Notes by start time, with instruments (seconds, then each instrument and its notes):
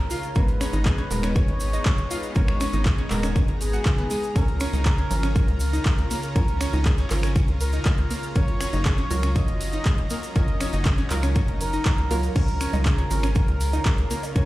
Already playing: analog synth pad C#3 C#4 F4 A#4, synth pluck F3 C#4, analog synth lead A#4
0.10 synth arpeggio sound F4 F5, open hi-hat, cabasa
0.23 closed hi-hat, cabasa
0.35 analog synth bass G#1, synth pluck G#2 G#3 B3 A#5, analog synth pad G#3 B3 D#4 A#5, synth arpeggio sound C#4 C#5, analog synth lead B4, kick, closed hi-hat, cabasa
0.48 closed hi-hat
0.61 synth arpeggio sound C#4 C#5, finger snap, open hi-hat, cabasa
0.73 analog synth bass G#1, synth arpeggio sound D#4 D#5, closed hi-hat, cabasa
0.85 synth arpeggio sound G#4 G#5, analog synth lead B4, kick, clap, closed hi-hat, cabasa
0.98 synth arpeggio sound C#4 C#5, closed hi-hat
1.11 analog synth bass D#1, synth pluck G#2 G#3 B3 A#4, open hi-hat, cabasa
1.23 synth arpeggio sound C#4 C#5, finger snap, closed hi-hat, cabasa
1.35 synth arpeggio sound C#4 C#5, analog synth lead C#5, kick, closed hi-hat, cabasa
1.48 analog synth bass G#1, closed hi-hat
1.60 open hi-hat, cabasa
1.73 synth arpeggio sound D#4 D#5, closed hi-hat, cabasa
1.85 synth arpeggio sound G#3 G#4, kick, clap, closed hi-hat, cabasa
1.98 analog synth bass G#1, closed hi-hat
2.11 synth arpeggio sound F4 F5, open hi-hat, cabasa
2.23 closed hi-hat, cabasa
2.35 analog synth bass G#1, synth pluck G#2 G#3 B3 A#4, synth arpeggio sound C#4 C#5, analog synth lead C#5, kick, closed hi-hat, cabasa
2.48 finger snap, closed hi-hat
2.60 synth arpeggio sound C#4 C#5, finger snap, open hi-hat, cabasa
2.73 analog synth bass G#1, synth arpeggio sound D#4 D#5, closed hi-hat, cabasa
2.85 synth arpeggio sound G#4 G#5, kick, clap, closed hi-hat, cabasa
2.98 synth arpeggio sound C#4 C#5, closed hi-hat
3.10 analog synth bass D#1, synth pluck G#2 G#3 B3 A#4, clap, open hi-hat, cabasa
3.23 synth arpeggio sound C#4 C#5, finger snap, closed hi-hat, cabasa
3.36 synth arpeggio sound C#4 C#5, kick, closed hi-hat, cabasa
3.48 analog synth bass G#1, closed hi-hat
3.61 analog synth lead G#4, open hi-hat, cabasa
3.73 synth arpeggio sound F#4 F#5, closed hi-hat, cabasa
3.85 synth arpeggio sound C#3 C#4, kick, clap, closed hi-hat, cabasa
3.98 analog synth bass G#1, synth arpeggio sound B3 B4, closed hi-hat
4.10 synth arpeggio sound G#3 G#4, open hi-hat, cabasa
4.23 closed hi-hat, cabasa
4.36 analog synth bass C#2, analog synth pad C#3 C#4 F4, synth pluck F3 C#4 A#4, synth arpeggio sound C#4 C#5, analog synth lead A#4, kick, closed hi-hat, ride, cabasa
4.48 closed hi-hat
4.60 synth arpeggio sound C#4 C#5, finger snap, open hi-hat, ride, cabasa
4.73 analog synth bass C#2, synth arpeggio sound D#4 D#5, closed hi-hat, cabasa
4.85 synth arpeggio sound G#4 G#5, analog synth lead A#4, kick, clap, closed hi-hat, ride, cabasa
4.98 synth arpeggio sound C#4 C#5, closed hi-hat
5.11 analog synth bass G#1, synth pluck F3 C#4 A#4, open hi-hat, ride, cabasa
5.23 synth arpeggio sound C#4 C#5, finger snap, closed hi-hat, cabasa
5.36 synth arpeggio sound C#4 C#5, analog synth lead A#4, kick, closed hi-hat, ride, cabasa
5.48 analog synth bass C#2, closed hi-hat
5.60 open hi-hat, ride, cabasa
5.73 synth arpeggio sound D#4 D#5, closed hi-hat, cabasa
5.85 synth arpeggio sound G#3 G#4, kick, clap, closed hi-hat, ride, cabasa
5.98 analog synth bass C#2, closed hi-hat
6.11 synth arpeggio sound A#3 A#4, open hi-hat, ride, cabasa
6.23 closed hi-hat, cabasa
6.36 analog synth bass C#2, synth pluck F3 C#4 A#4, synth arpeggio sound C#4 C#5, analog synth lead A#4, kick, closed hi-hat, ride, cabasa
6.48 closed hi-hat
6.61 synth arpeggio sound C#4 C#5, finger snap, open hi-hat, ride, cabasa
6.73 analog synth bass C#2, synth arpeggio sound D#4 D#5, closed hi-hat, cabasa
6.85 synth arpeggio sound G#4 G#5, kick, clap, closed hi-hat, ride, cabasa
6.98 synth arpeggio sound C#4 C#5, closed hi-hat
7.10 analog synth bass G#1, synth pluck F3 C#4 A#4, clap, open hi-hat, ride, cabasa
7.23 synth arpeggio sound C#4 C#5, finger snap, closed hi-hat, cabasa
7.36 synth arpeggio sound C#4 C#5, kick, closed hi-hat, ride, cabasa
7.48 analog synth bass C#2, closed hi-hat
7.61 analog synth lead A#4, open hi-hat, ride, cabasa
7.73 synth arpeggio sound D#4 D#5, closed hi-hat, cabasa
7.85 synth arpeggio sound G#3 G#4, kick, clap, closed hi-hat, ride, cabasa
7.98 analog synth bass C#2, closed hi-hat
8.11 synth arpeggio sound A#3 A#4, open hi-hat, ride, cabasa
8.23 closed hi-hat, cabasa
8.36 analog synth bass F#1, synth pluck F#3 F4 A#4, analog synth pad F#3 C#4, synth arpeggio sound C#4 C#5, analog synth lead C#5, kick, closed hi-hat, ride, cabasa
8.48 closed hi-hat
8.61 synth arpeggio sound C#4 C#5, finger snap, open hi-hat, ride, cabasa
8.73 analog synth bass F#1, synth arpeggio sound D#4 D#5, closed hi-hat, cabasa
8.85 synth arpeggio sound G#4 G#5, analog synth lead C#5, kick, clap, closed hi-hat, ride, cabasa
8.98 synth arpeggio sound C#4 C#5, closed hi-hat
9.11 analog synth bass C#2, synth pluck F#3 F4 A#4, open hi-hat, ride, cabasa
9.23 synth arpeggio sound C#4 C#5, finger snap, closed hi-hat, cabasa
9.36 synth arpeggio sound C#4 C#5, analog synth lead D#5, kick, closed hi-hat, ride, cabasa
9.48 analog synth bass F#1, closed hi-hat
9.61 open hi-hat, ride, cabasa
9.72 synth arpeggio sound D#4 D#5, closed hi-hat, cabasa
9.85 synth arpeggio sound G#3 G#4, kick, clap, closed hi-hat, ride, cabasa
9.98 analog synth bass F#1, closed hi-hat
10.10 synth arpeggio sound A#3 A#4, open hi-hat, ride, cabasa
10.23 closed hi-hat, cabasa
10.36 analog synth bass F#1, synth pluck F#3 F4 A#4, synth arpeggio sound C#4 C#5, analog synth pad D#4, analog synth lead D#5, kick, closed hi-hat, ride, cabasa
10.48 closed hi-hat
10.61 synth arpeggio sound C#4 C#5, finger snap, open hi-hat, ride, cabasa
10.73 analog synth bass F#1, synth arpeggio sound D#4 D#5, closed hi-hat, cabasa
10.85 synth arpeggio sound G#4 G#5, kick, clap, closed hi-hat, ride, cabasa
10.98 synth arpeggio sound C#4 C#5, closed hi-hat
11.10 analog synth bass C#2, synth pluck F#3 F4 A#4, clap, open hi-hat, ride, cabasa
11.23 synth arpeggio sound C#4 C#5, finger snap, closed hi-hat, cabasa
11.35 synth arpeggio sound C#4 C#5, kick, closed hi-hat, ride, cabasa
11.48 analog synth bass F#1, closed hi-hat
11.61 analog synth lead A#4, open hi-hat, ride, cabasa
11.73 synth arpeggio sound D#4 D#5, closed hi-hat, cabasa
11.85 synth arpeggio sound G#3 G#4, kick, clap, closed hi-hat, ride, cabasa
11.98 analog synth bass C#2, closed hi-hat
12.11 synth pluck F#3 F4 A#4, synth arpeggio sound A#3 A#4, open hi-hat, ride, cabasa
12.23 closed hi-hat, cabasa
12.35 analog synth bass C#2, analog synth pad C#3 F4 A#4, synth pluck F3 C#4 A#4, synth arpeggio sound C#4 C#5, analog synth lead A#4, kick, closed hi-hat, crash, ride, cabasa
12.48 closed hi-hat
12.61 synth arpeggio sound C#4 C#5, finger snap, open hi-hat, ride, cabasa
12.73 analog synth bass C#2, synth arpeggio sound D#4 D#5, closed hi-hat, high bongo, low conga, cabasa
12.85 synth arpeggio sound G#4 G#5, analog synth lead A#4, kick, clap, closed hi-hat, ride, high conga, cabasa
12.98 synth arpeggio sound C#4 C#5, closed hi-hat
13.11 analog synth bass G#1, synth pluck F3 C#4 A#4, open hi-hat, ride, cabasa
13.23 synth arpeggio sound C#4 C#5, finger snap, closed hi-hat, cabasa
13.35 synth arpeggio sound C#4 C#5, analog synth lead A#4, kick, closed hi-hat, ride, cabasa
13.48 analog synth bass C#2, closed hi-hat
13.61 open hi-hat, ride, cabasa
13.73 synth arpeggio sound D#4 D#5, closed hi-hat, high bongo, cabasa
13.85 synth arpeggio sound G#3 G#4, kick, clap, closed hi-hat, ride, cabasa
13.98 analog synth bass C#2, closed hi-hat
14.11 synth arpeggio sound A#3 A#4, open hi-hat, ride, cabasa
14.23 closed hi-hat, high bongo, cabasa
14.36 analog synth bass C#2, synth pluck F3 C#4 A#4, synth arpeggio sound C#4 C#5, analog synth pad G#4, analog synth lead A#4, kick, closed hi-hat, ride, cabasa